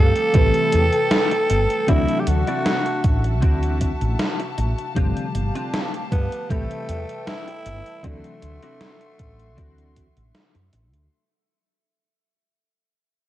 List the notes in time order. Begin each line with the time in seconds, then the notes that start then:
Already playing: G2 D3 F3 G3 A3 C4 G4 A4 F5 A5
0.16 closed hi-hat
0.33 A1 C3 E3 G3 A3 C4 E4 G4 A4 B4 G5, kick, closed hi-hat
0.54 closed hi-hat
0.72 E2, closed hi-hat
0.93 closed hi-hat
1.11 snare, closed hi-hat
1.31 muted clean electric guitar stroke, closed hi-hat
1.50 G1, muted clean electric guitar stroke, closed hi-hat
1.70 closed hi-hat
1.87 D2 C3 E3 F#3 A3 C4 D4 E4 F#4 E5 A5, kick, closed hi-hat
2.08 closed hi-hat
2.20 G4
2.27 D2 F#4, closed hi-hat
2.47 C4 D4 E4 A4, closed hi-hat
2.66 snare, closed hi-hat
2.86 closed hi-hat
3.04 A1, muted clean electric guitar stroke, kick, closed hi-hat
3.24 closed hi-hat
3.42 D2 C4 D4 E4 F#4, kick, closed hi-hat
3.63 closed hi-hat
3.81 kick, closed hi-hat
4.01 A1, closed hi-hat
4.19 snare, closed hi-hat
4.40 muted clean electric guitar stroke, closed hi-hat
4.58 A1, muted clean electric guitar stroke, closed hi-hat
4.79 closed hi-hat
4.94 G1 C3 D3 F3 G3 A3 C4 D4 F4 G4 F5, kick, closed hi-hat
5.17 closed hi-hat
5.35 G1, closed hi-hat
5.55 C4 D4 F4 G4, closed hi-hat
5.74 snare, closed hi-hat
5.94 closed hi-hat
6.12 G2 B3, muted clean electric guitar stroke, kick, closed hi-hat
6.32 closed hi-hat
6.49 A1 C3 E3 G3 A3 C4 E4 G4 A4 B4 G5, kick, closed hi-hat
6.71 closed hi-hat
6.89 E2, closed hi-hat
7.09 closed hi-hat
7.27 E4, snare, closed hi-hat
7.48 muted clean electric guitar stroke, closed hi-hat
7.66 G1, muted clean electric guitar stroke, closed hi-hat
7.86 closed hi-hat
8.02 D2 C3 E3 F#3 A3 C4 D4 E4 F#4 E5 C6, kick, closed hi-hat
8.24 closed hi-hat
8.42 D2, closed hi-hat
8.63 C4 D4 E4 F#4, closed hi-hat
8.81 snare, closed hi-hat
9.01 closed hi-hat
9.19 A1, muted clean electric guitar stroke, kick, closed hi-hat
9.39 closed hi-hat
9.57 D2 C4 D4 E4 F#4, kick, closed hi-hat
9.78 closed hi-hat
9.96 kick, closed hi-hat
10.17 A1, closed hi-hat
10.35 snare, closed hi-hat
10.54 F#2, muted clean electric guitar stroke, closed hi-hat
10.73 A1, muted clean electric guitar stroke, closed hi-hat
10.93 D2, closed hi-hat